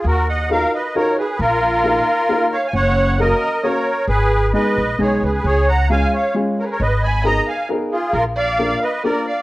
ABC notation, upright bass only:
X:1
M:3/4
L:1/8
Q:1/4=134
K:Ebm
V:1 name="Upright bass" clef=bass
E,,4 z2 | B,,,4 z2 | G,,,4 z2 | A,,,3 B,,, C,, D,, |
D,,4 z2 | A,,,4 z2 | B,,,4 z2 |]